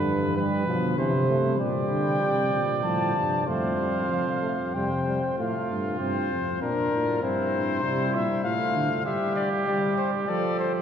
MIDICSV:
0, 0, Header, 1, 5, 480
1, 0, Start_track
1, 0, Key_signature, -1, "major"
1, 0, Tempo, 619195
1, 1241, Time_signature, 3, 2, 24, 8
1, 2204, Tempo, 632911
1, 4604, Tempo, 610998
1, 8384, End_track
2, 0, Start_track
2, 0, Title_t, "Trumpet"
2, 0, Program_c, 0, 56
2, 1245, Note_on_c, 0, 79, 69
2, 2175, Note_off_c, 0, 79, 0
2, 2196, Note_on_c, 0, 81, 74
2, 2669, Note_off_c, 0, 81, 0
2, 2678, Note_on_c, 0, 77, 66
2, 3643, Note_on_c, 0, 79, 55
2, 3654, Note_off_c, 0, 77, 0
2, 4126, Note_off_c, 0, 79, 0
2, 4130, Note_on_c, 0, 77, 58
2, 4574, Note_off_c, 0, 77, 0
2, 4602, Note_on_c, 0, 72, 66
2, 5074, Note_off_c, 0, 72, 0
2, 5084, Note_on_c, 0, 70, 77
2, 5549, Note_off_c, 0, 70, 0
2, 5561, Note_on_c, 0, 72, 78
2, 6284, Note_on_c, 0, 76, 75
2, 6296, Note_off_c, 0, 72, 0
2, 6512, Note_off_c, 0, 76, 0
2, 6517, Note_on_c, 0, 77, 81
2, 6987, Note_off_c, 0, 77, 0
2, 6998, Note_on_c, 0, 76, 73
2, 7233, Note_off_c, 0, 76, 0
2, 7237, Note_on_c, 0, 74, 68
2, 7345, Note_off_c, 0, 74, 0
2, 7477, Note_on_c, 0, 74, 59
2, 7586, Note_off_c, 0, 74, 0
2, 7719, Note_on_c, 0, 72, 68
2, 7828, Note_off_c, 0, 72, 0
2, 7954, Note_on_c, 0, 74, 77
2, 8194, Note_off_c, 0, 74, 0
2, 8206, Note_on_c, 0, 72, 66
2, 8314, Note_off_c, 0, 72, 0
2, 8384, End_track
3, 0, Start_track
3, 0, Title_t, "Flugelhorn"
3, 0, Program_c, 1, 56
3, 0, Note_on_c, 1, 71, 76
3, 277, Note_off_c, 1, 71, 0
3, 284, Note_on_c, 1, 71, 74
3, 754, Note_off_c, 1, 71, 0
3, 763, Note_on_c, 1, 72, 62
3, 1231, Note_off_c, 1, 72, 0
3, 1241, Note_on_c, 1, 74, 70
3, 2681, Note_on_c, 1, 72, 66
3, 2692, Note_off_c, 1, 74, 0
3, 3649, Note_off_c, 1, 72, 0
3, 3652, Note_on_c, 1, 72, 51
3, 4124, Note_off_c, 1, 72, 0
3, 4129, Note_on_c, 1, 65, 63
3, 4955, Note_off_c, 1, 65, 0
3, 5089, Note_on_c, 1, 65, 54
3, 5563, Note_on_c, 1, 64, 67
3, 5575, Note_off_c, 1, 65, 0
3, 6033, Note_off_c, 1, 64, 0
3, 6037, Note_on_c, 1, 64, 61
3, 6508, Note_off_c, 1, 64, 0
3, 6517, Note_on_c, 1, 65, 64
3, 6987, Note_off_c, 1, 65, 0
3, 6999, Note_on_c, 1, 67, 78
3, 7969, Note_on_c, 1, 69, 67
3, 7981, Note_off_c, 1, 67, 0
3, 8384, Note_off_c, 1, 69, 0
3, 8384, End_track
4, 0, Start_track
4, 0, Title_t, "Trombone"
4, 0, Program_c, 2, 57
4, 0, Note_on_c, 2, 50, 67
4, 287, Note_on_c, 2, 55, 71
4, 298, Note_off_c, 2, 50, 0
4, 517, Note_off_c, 2, 55, 0
4, 521, Note_on_c, 2, 53, 67
4, 757, Note_off_c, 2, 53, 0
4, 763, Note_on_c, 2, 52, 61
4, 870, Note_off_c, 2, 52, 0
4, 993, Note_on_c, 2, 57, 62
4, 1228, Note_off_c, 2, 57, 0
4, 1233, Note_on_c, 2, 55, 64
4, 2169, Note_off_c, 2, 55, 0
4, 2198, Note_on_c, 2, 53, 62
4, 2670, Note_off_c, 2, 53, 0
4, 2681, Note_on_c, 2, 57, 61
4, 2922, Note_on_c, 2, 55, 54
4, 2933, Note_off_c, 2, 57, 0
4, 3154, Note_off_c, 2, 55, 0
4, 3159, Note_on_c, 2, 53, 52
4, 3269, Note_off_c, 2, 53, 0
4, 3405, Note_on_c, 2, 57, 51
4, 3515, Note_off_c, 2, 57, 0
4, 3649, Note_on_c, 2, 55, 47
4, 3758, Note_off_c, 2, 55, 0
4, 3892, Note_on_c, 2, 55, 53
4, 4000, Note_off_c, 2, 55, 0
4, 4132, Note_on_c, 2, 57, 58
4, 4575, Note_off_c, 2, 57, 0
4, 4603, Note_on_c, 2, 60, 62
4, 5074, Note_off_c, 2, 60, 0
4, 5088, Note_on_c, 2, 62, 59
4, 5551, Note_off_c, 2, 62, 0
4, 5565, Note_on_c, 2, 60, 64
4, 6030, Note_off_c, 2, 60, 0
4, 6044, Note_on_c, 2, 55, 64
4, 6521, Note_on_c, 2, 57, 60
4, 6533, Note_off_c, 2, 55, 0
4, 6994, Note_off_c, 2, 57, 0
4, 6999, Note_on_c, 2, 55, 60
4, 7469, Note_off_c, 2, 55, 0
4, 7483, Note_on_c, 2, 55, 75
4, 7953, Note_off_c, 2, 55, 0
4, 7960, Note_on_c, 2, 53, 72
4, 8384, Note_off_c, 2, 53, 0
4, 8384, End_track
5, 0, Start_track
5, 0, Title_t, "Bass trombone"
5, 0, Program_c, 3, 57
5, 0, Note_on_c, 3, 43, 80
5, 507, Note_off_c, 3, 43, 0
5, 522, Note_on_c, 3, 47, 68
5, 758, Note_off_c, 3, 47, 0
5, 761, Note_on_c, 3, 48, 85
5, 1230, Note_off_c, 3, 48, 0
5, 1239, Note_on_c, 3, 46, 61
5, 1464, Note_off_c, 3, 46, 0
5, 1482, Note_on_c, 3, 50, 58
5, 1717, Note_off_c, 3, 50, 0
5, 1722, Note_on_c, 3, 48, 65
5, 1958, Note_off_c, 3, 48, 0
5, 1962, Note_on_c, 3, 46, 60
5, 2210, Note_on_c, 3, 45, 70
5, 2221, Note_off_c, 3, 46, 0
5, 2445, Note_off_c, 3, 45, 0
5, 2449, Note_on_c, 3, 43, 58
5, 2692, Note_on_c, 3, 41, 62
5, 2704, Note_off_c, 3, 43, 0
5, 3651, Note_off_c, 3, 41, 0
5, 3655, Note_on_c, 3, 48, 54
5, 4008, Note_off_c, 3, 48, 0
5, 4137, Note_on_c, 3, 45, 54
5, 4243, Note_off_c, 3, 45, 0
5, 4371, Note_on_c, 3, 43, 57
5, 4598, Note_off_c, 3, 43, 0
5, 4602, Note_on_c, 3, 43, 63
5, 4851, Note_on_c, 3, 41, 55
5, 4863, Note_off_c, 3, 43, 0
5, 5079, Note_off_c, 3, 41, 0
5, 5084, Note_on_c, 3, 46, 62
5, 5317, Note_off_c, 3, 46, 0
5, 5324, Note_on_c, 3, 45, 57
5, 5556, Note_off_c, 3, 45, 0
5, 5564, Note_on_c, 3, 43, 58
5, 6035, Note_on_c, 3, 48, 66
5, 6046, Note_off_c, 3, 43, 0
5, 6272, Note_off_c, 3, 48, 0
5, 6277, Note_on_c, 3, 46, 56
5, 6385, Note_off_c, 3, 46, 0
5, 6519, Note_on_c, 3, 45, 65
5, 6627, Note_off_c, 3, 45, 0
5, 6761, Note_on_c, 3, 50, 61
5, 6868, Note_off_c, 3, 50, 0
5, 8384, End_track
0, 0, End_of_file